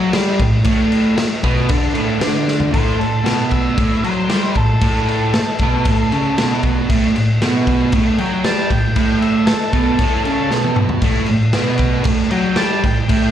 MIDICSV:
0, 0, Header, 1, 5, 480
1, 0, Start_track
1, 0, Tempo, 518135
1, 609, Time_signature, 4, 2, 24, 8
1, 12331, End_track
2, 0, Start_track
2, 0, Title_t, "Lead electric guitar"
2, 0, Program_c, 0, 29
2, 2537, Note_on_c, 0, 72, 122
2, 2763, Note_off_c, 0, 72, 0
2, 2766, Note_on_c, 0, 69, 87
2, 3236, Note_off_c, 0, 69, 0
2, 3258, Note_on_c, 0, 76, 91
2, 3722, Note_off_c, 0, 76, 0
2, 3748, Note_on_c, 0, 72, 95
2, 4228, Note_off_c, 0, 72, 0
2, 4228, Note_on_c, 0, 69, 93
2, 4688, Note_off_c, 0, 69, 0
2, 4717, Note_on_c, 0, 69, 96
2, 6111, Note_off_c, 0, 69, 0
2, 7587, Note_on_c, 0, 79, 93
2, 7814, Note_off_c, 0, 79, 0
2, 7826, Note_on_c, 0, 81, 92
2, 8054, Note_off_c, 0, 81, 0
2, 8059, Note_on_c, 0, 79, 94
2, 8522, Note_off_c, 0, 79, 0
2, 8536, Note_on_c, 0, 76, 106
2, 8766, Note_on_c, 0, 69, 86
2, 8768, Note_off_c, 0, 76, 0
2, 9002, Note_off_c, 0, 69, 0
2, 9018, Note_on_c, 0, 69, 94
2, 9476, Note_off_c, 0, 69, 0
2, 9487, Note_on_c, 0, 69, 101
2, 9954, Note_off_c, 0, 69, 0
2, 11404, Note_on_c, 0, 79, 103
2, 11636, Note_off_c, 0, 79, 0
2, 11640, Note_on_c, 0, 81, 98
2, 11877, Note_off_c, 0, 81, 0
2, 11889, Note_on_c, 0, 79, 101
2, 12331, Note_off_c, 0, 79, 0
2, 12331, End_track
3, 0, Start_track
3, 0, Title_t, "Distorted electric guitar"
3, 0, Program_c, 1, 30
3, 0, Note_on_c, 1, 54, 100
3, 0, Note_on_c, 1, 66, 92
3, 111, Note_off_c, 1, 54, 0
3, 113, Note_off_c, 1, 66, 0
3, 118, Note_on_c, 1, 55, 90
3, 123, Note_on_c, 1, 67, 109
3, 356, Note_off_c, 1, 55, 0
3, 359, Note_off_c, 1, 67, 0
3, 373, Note_on_c, 1, 45, 75
3, 563, Note_off_c, 1, 45, 0
3, 595, Note_on_c, 1, 45, 88
3, 599, Note_on_c, 1, 57, 115
3, 1075, Note_off_c, 1, 45, 0
3, 1077, Note_off_c, 1, 57, 0
3, 1327, Note_on_c, 1, 47, 84
3, 1333, Note_on_c, 1, 59, 110
3, 1562, Note_off_c, 1, 47, 0
3, 1564, Note_off_c, 1, 59, 0
3, 1570, Note_on_c, 1, 50, 86
3, 1576, Note_on_c, 1, 62, 112
3, 1790, Note_off_c, 1, 50, 0
3, 1793, Note_off_c, 1, 62, 0
3, 1793, Note_on_c, 1, 45, 91
3, 1796, Note_on_c, 1, 57, 111
3, 2029, Note_off_c, 1, 45, 0
3, 2033, Note_on_c, 1, 50, 88
3, 2037, Note_off_c, 1, 57, 0
3, 2040, Note_on_c, 1, 62, 107
3, 2514, Note_off_c, 1, 50, 0
3, 2517, Note_on_c, 1, 45, 89
3, 2519, Note_off_c, 1, 62, 0
3, 2524, Note_on_c, 1, 57, 98
3, 2755, Note_off_c, 1, 45, 0
3, 2761, Note_off_c, 1, 57, 0
3, 2766, Note_on_c, 1, 45, 70
3, 2962, Note_off_c, 1, 45, 0
3, 2999, Note_on_c, 1, 47, 86
3, 3011, Note_on_c, 1, 59, 88
3, 3480, Note_off_c, 1, 47, 0
3, 3486, Note_off_c, 1, 59, 0
3, 3494, Note_on_c, 1, 45, 102
3, 3499, Note_on_c, 1, 57, 111
3, 3727, Note_off_c, 1, 45, 0
3, 3730, Note_off_c, 1, 57, 0
3, 3744, Note_on_c, 1, 54, 91
3, 3745, Note_on_c, 1, 66, 100
3, 3971, Note_on_c, 1, 55, 94
3, 3973, Note_off_c, 1, 54, 0
3, 3973, Note_off_c, 1, 66, 0
3, 3974, Note_on_c, 1, 67, 98
3, 4206, Note_off_c, 1, 55, 0
3, 4208, Note_off_c, 1, 67, 0
3, 4225, Note_on_c, 1, 45, 75
3, 4412, Note_off_c, 1, 45, 0
3, 4460, Note_on_c, 1, 45, 97
3, 4475, Note_on_c, 1, 57, 96
3, 4931, Note_off_c, 1, 45, 0
3, 4939, Note_off_c, 1, 57, 0
3, 5201, Note_on_c, 1, 47, 100
3, 5210, Note_on_c, 1, 59, 108
3, 5422, Note_off_c, 1, 47, 0
3, 5426, Note_off_c, 1, 59, 0
3, 5434, Note_on_c, 1, 45, 93
3, 5439, Note_on_c, 1, 57, 118
3, 5658, Note_off_c, 1, 45, 0
3, 5661, Note_off_c, 1, 57, 0
3, 5675, Note_on_c, 1, 49, 94
3, 5678, Note_on_c, 1, 61, 98
3, 5899, Note_off_c, 1, 49, 0
3, 5900, Note_off_c, 1, 61, 0
3, 5911, Note_on_c, 1, 47, 104
3, 5926, Note_on_c, 1, 59, 104
3, 6377, Note_off_c, 1, 47, 0
3, 6384, Note_off_c, 1, 59, 0
3, 6386, Note_on_c, 1, 45, 90
3, 6395, Note_on_c, 1, 57, 108
3, 6614, Note_off_c, 1, 45, 0
3, 6618, Note_off_c, 1, 57, 0
3, 6641, Note_on_c, 1, 45, 73
3, 6821, Note_off_c, 1, 45, 0
3, 6877, Note_on_c, 1, 47, 86
3, 6877, Note_on_c, 1, 59, 103
3, 7339, Note_off_c, 1, 47, 0
3, 7339, Note_off_c, 1, 59, 0
3, 7353, Note_on_c, 1, 45, 113
3, 7357, Note_on_c, 1, 57, 103
3, 7577, Note_off_c, 1, 45, 0
3, 7579, Note_off_c, 1, 57, 0
3, 7588, Note_on_c, 1, 54, 99
3, 7603, Note_on_c, 1, 66, 90
3, 7814, Note_off_c, 1, 54, 0
3, 7822, Note_off_c, 1, 66, 0
3, 7824, Note_on_c, 1, 55, 96
3, 7831, Note_on_c, 1, 67, 108
3, 8052, Note_off_c, 1, 55, 0
3, 8056, Note_off_c, 1, 67, 0
3, 8067, Note_on_c, 1, 45, 72
3, 8253, Note_off_c, 1, 45, 0
3, 8301, Note_on_c, 1, 45, 95
3, 8313, Note_on_c, 1, 57, 89
3, 8762, Note_off_c, 1, 45, 0
3, 8776, Note_off_c, 1, 57, 0
3, 9019, Note_on_c, 1, 47, 99
3, 9023, Note_on_c, 1, 59, 101
3, 9249, Note_off_c, 1, 47, 0
3, 9250, Note_off_c, 1, 59, 0
3, 9259, Note_on_c, 1, 45, 96
3, 9265, Note_on_c, 1, 57, 105
3, 9488, Note_off_c, 1, 45, 0
3, 9491, Note_off_c, 1, 57, 0
3, 9498, Note_on_c, 1, 49, 81
3, 9507, Note_on_c, 1, 61, 91
3, 9743, Note_off_c, 1, 49, 0
3, 9743, Note_on_c, 1, 47, 94
3, 9752, Note_off_c, 1, 61, 0
3, 9752, Note_on_c, 1, 59, 106
3, 10209, Note_off_c, 1, 47, 0
3, 10214, Note_off_c, 1, 59, 0
3, 10218, Note_on_c, 1, 45, 91
3, 10228, Note_on_c, 1, 57, 97
3, 10447, Note_off_c, 1, 45, 0
3, 10452, Note_off_c, 1, 57, 0
3, 10469, Note_on_c, 1, 45, 73
3, 10651, Note_off_c, 1, 45, 0
3, 10695, Note_on_c, 1, 47, 97
3, 10698, Note_on_c, 1, 59, 107
3, 11149, Note_off_c, 1, 47, 0
3, 11153, Note_on_c, 1, 45, 97
3, 11157, Note_off_c, 1, 59, 0
3, 11161, Note_on_c, 1, 57, 119
3, 11393, Note_off_c, 1, 45, 0
3, 11397, Note_off_c, 1, 57, 0
3, 11406, Note_on_c, 1, 54, 94
3, 11412, Note_on_c, 1, 66, 98
3, 11640, Note_off_c, 1, 54, 0
3, 11640, Note_on_c, 1, 55, 88
3, 11643, Note_off_c, 1, 66, 0
3, 11643, Note_on_c, 1, 67, 118
3, 11877, Note_off_c, 1, 55, 0
3, 11878, Note_off_c, 1, 67, 0
3, 11892, Note_on_c, 1, 45, 77
3, 12082, Note_off_c, 1, 45, 0
3, 12121, Note_on_c, 1, 45, 95
3, 12126, Note_on_c, 1, 57, 101
3, 12331, Note_off_c, 1, 45, 0
3, 12331, Note_off_c, 1, 57, 0
3, 12331, End_track
4, 0, Start_track
4, 0, Title_t, "Muted distorted electric guitar strokes"
4, 1085, Note_on_c, 9, 29, 62
4, 1178, Note_off_c, 9, 29, 0
4, 4960, Note_on_c, 9, 29, 59
4, 5053, Note_off_c, 9, 29, 0
4, 8773, Note_on_c, 9, 29, 57
4, 8865, Note_off_c, 9, 29, 0
4, 12331, End_track
5, 0, Start_track
5, 0, Title_t, "Drums"
5, 121, Note_on_c, 9, 49, 93
5, 124, Note_on_c, 9, 38, 116
5, 214, Note_off_c, 9, 49, 0
5, 217, Note_off_c, 9, 38, 0
5, 367, Note_on_c, 9, 36, 83
5, 367, Note_on_c, 9, 49, 58
5, 459, Note_off_c, 9, 36, 0
5, 460, Note_off_c, 9, 49, 0
5, 597, Note_on_c, 9, 49, 77
5, 606, Note_on_c, 9, 36, 118
5, 690, Note_off_c, 9, 49, 0
5, 699, Note_off_c, 9, 36, 0
5, 851, Note_on_c, 9, 49, 62
5, 943, Note_off_c, 9, 49, 0
5, 1088, Note_on_c, 9, 49, 89
5, 1091, Note_on_c, 9, 38, 115
5, 1181, Note_off_c, 9, 49, 0
5, 1184, Note_off_c, 9, 38, 0
5, 1329, Note_on_c, 9, 49, 63
5, 1333, Note_on_c, 9, 36, 92
5, 1422, Note_off_c, 9, 49, 0
5, 1425, Note_off_c, 9, 36, 0
5, 1564, Note_on_c, 9, 49, 86
5, 1571, Note_on_c, 9, 36, 127
5, 1656, Note_off_c, 9, 49, 0
5, 1664, Note_off_c, 9, 36, 0
5, 1806, Note_on_c, 9, 49, 64
5, 1899, Note_off_c, 9, 49, 0
5, 2049, Note_on_c, 9, 49, 92
5, 2052, Note_on_c, 9, 38, 121
5, 2142, Note_off_c, 9, 49, 0
5, 2144, Note_off_c, 9, 38, 0
5, 2297, Note_on_c, 9, 38, 65
5, 2390, Note_off_c, 9, 38, 0
5, 2408, Note_on_c, 9, 43, 91
5, 2501, Note_off_c, 9, 43, 0
5, 2538, Note_on_c, 9, 36, 117
5, 2540, Note_on_c, 9, 49, 87
5, 2630, Note_off_c, 9, 36, 0
5, 2633, Note_off_c, 9, 49, 0
5, 2789, Note_on_c, 9, 49, 59
5, 2881, Note_off_c, 9, 49, 0
5, 3020, Note_on_c, 9, 49, 83
5, 3023, Note_on_c, 9, 38, 114
5, 3112, Note_off_c, 9, 49, 0
5, 3115, Note_off_c, 9, 38, 0
5, 3251, Note_on_c, 9, 49, 66
5, 3258, Note_on_c, 9, 36, 81
5, 3344, Note_off_c, 9, 49, 0
5, 3351, Note_off_c, 9, 36, 0
5, 3498, Note_on_c, 9, 49, 79
5, 3500, Note_on_c, 9, 36, 116
5, 3591, Note_off_c, 9, 49, 0
5, 3593, Note_off_c, 9, 36, 0
5, 3746, Note_on_c, 9, 49, 59
5, 3839, Note_off_c, 9, 49, 0
5, 3979, Note_on_c, 9, 49, 78
5, 3982, Note_on_c, 9, 38, 119
5, 4072, Note_off_c, 9, 49, 0
5, 4074, Note_off_c, 9, 38, 0
5, 4216, Note_on_c, 9, 49, 58
5, 4222, Note_on_c, 9, 36, 86
5, 4309, Note_off_c, 9, 49, 0
5, 4314, Note_off_c, 9, 36, 0
5, 4458, Note_on_c, 9, 49, 81
5, 4462, Note_on_c, 9, 36, 124
5, 4551, Note_off_c, 9, 49, 0
5, 4555, Note_off_c, 9, 36, 0
5, 4711, Note_on_c, 9, 49, 57
5, 4803, Note_off_c, 9, 49, 0
5, 4943, Note_on_c, 9, 49, 73
5, 4945, Note_on_c, 9, 38, 109
5, 5035, Note_off_c, 9, 49, 0
5, 5038, Note_off_c, 9, 38, 0
5, 5175, Note_on_c, 9, 49, 63
5, 5184, Note_on_c, 9, 36, 96
5, 5268, Note_off_c, 9, 49, 0
5, 5277, Note_off_c, 9, 36, 0
5, 5421, Note_on_c, 9, 49, 81
5, 5426, Note_on_c, 9, 36, 123
5, 5513, Note_off_c, 9, 49, 0
5, 5519, Note_off_c, 9, 36, 0
5, 5670, Note_on_c, 9, 49, 62
5, 5762, Note_off_c, 9, 49, 0
5, 5909, Note_on_c, 9, 49, 89
5, 5912, Note_on_c, 9, 38, 122
5, 6002, Note_off_c, 9, 49, 0
5, 6004, Note_off_c, 9, 38, 0
5, 6141, Note_on_c, 9, 49, 58
5, 6146, Note_on_c, 9, 36, 88
5, 6233, Note_off_c, 9, 49, 0
5, 6239, Note_off_c, 9, 36, 0
5, 6389, Note_on_c, 9, 49, 86
5, 6390, Note_on_c, 9, 36, 113
5, 6482, Note_off_c, 9, 36, 0
5, 6482, Note_off_c, 9, 49, 0
5, 6631, Note_on_c, 9, 49, 58
5, 6724, Note_off_c, 9, 49, 0
5, 6870, Note_on_c, 9, 49, 84
5, 6873, Note_on_c, 9, 38, 116
5, 6963, Note_off_c, 9, 49, 0
5, 6966, Note_off_c, 9, 38, 0
5, 7107, Note_on_c, 9, 36, 83
5, 7107, Note_on_c, 9, 49, 63
5, 7200, Note_off_c, 9, 36, 0
5, 7200, Note_off_c, 9, 49, 0
5, 7339, Note_on_c, 9, 49, 85
5, 7346, Note_on_c, 9, 36, 123
5, 7432, Note_off_c, 9, 49, 0
5, 7439, Note_off_c, 9, 36, 0
5, 7582, Note_on_c, 9, 49, 60
5, 7675, Note_off_c, 9, 49, 0
5, 7822, Note_on_c, 9, 49, 85
5, 7824, Note_on_c, 9, 38, 116
5, 7914, Note_off_c, 9, 49, 0
5, 7917, Note_off_c, 9, 38, 0
5, 8064, Note_on_c, 9, 36, 83
5, 8069, Note_on_c, 9, 49, 59
5, 8157, Note_off_c, 9, 36, 0
5, 8161, Note_off_c, 9, 49, 0
5, 8299, Note_on_c, 9, 49, 75
5, 8303, Note_on_c, 9, 36, 110
5, 8391, Note_off_c, 9, 49, 0
5, 8396, Note_off_c, 9, 36, 0
5, 8544, Note_on_c, 9, 49, 57
5, 8636, Note_off_c, 9, 49, 0
5, 8771, Note_on_c, 9, 49, 77
5, 8774, Note_on_c, 9, 38, 113
5, 8864, Note_off_c, 9, 49, 0
5, 8867, Note_off_c, 9, 38, 0
5, 9013, Note_on_c, 9, 49, 65
5, 9016, Note_on_c, 9, 36, 95
5, 9106, Note_off_c, 9, 49, 0
5, 9108, Note_off_c, 9, 36, 0
5, 9253, Note_on_c, 9, 49, 89
5, 9254, Note_on_c, 9, 36, 118
5, 9345, Note_off_c, 9, 49, 0
5, 9346, Note_off_c, 9, 36, 0
5, 9497, Note_on_c, 9, 49, 59
5, 9590, Note_off_c, 9, 49, 0
5, 9735, Note_on_c, 9, 38, 70
5, 9828, Note_off_c, 9, 38, 0
5, 9860, Note_on_c, 9, 48, 63
5, 9952, Note_off_c, 9, 48, 0
5, 9970, Note_on_c, 9, 45, 96
5, 10062, Note_off_c, 9, 45, 0
5, 10089, Note_on_c, 9, 43, 94
5, 10182, Note_off_c, 9, 43, 0
5, 10205, Note_on_c, 9, 49, 90
5, 10209, Note_on_c, 9, 36, 118
5, 10298, Note_off_c, 9, 49, 0
5, 10301, Note_off_c, 9, 36, 0
5, 10433, Note_on_c, 9, 49, 65
5, 10526, Note_off_c, 9, 49, 0
5, 10680, Note_on_c, 9, 49, 82
5, 10683, Note_on_c, 9, 38, 120
5, 10773, Note_off_c, 9, 49, 0
5, 10775, Note_off_c, 9, 38, 0
5, 10909, Note_on_c, 9, 49, 64
5, 10925, Note_on_c, 9, 36, 92
5, 11002, Note_off_c, 9, 49, 0
5, 11018, Note_off_c, 9, 36, 0
5, 11153, Note_on_c, 9, 49, 93
5, 11166, Note_on_c, 9, 36, 123
5, 11246, Note_off_c, 9, 49, 0
5, 11259, Note_off_c, 9, 36, 0
5, 11400, Note_on_c, 9, 49, 64
5, 11493, Note_off_c, 9, 49, 0
5, 11634, Note_on_c, 9, 49, 84
5, 11636, Note_on_c, 9, 38, 115
5, 11726, Note_off_c, 9, 49, 0
5, 11729, Note_off_c, 9, 38, 0
5, 11893, Note_on_c, 9, 36, 88
5, 11893, Note_on_c, 9, 49, 61
5, 11985, Note_off_c, 9, 36, 0
5, 11986, Note_off_c, 9, 49, 0
5, 12128, Note_on_c, 9, 49, 87
5, 12132, Note_on_c, 9, 36, 109
5, 12220, Note_off_c, 9, 49, 0
5, 12225, Note_off_c, 9, 36, 0
5, 12331, End_track
0, 0, End_of_file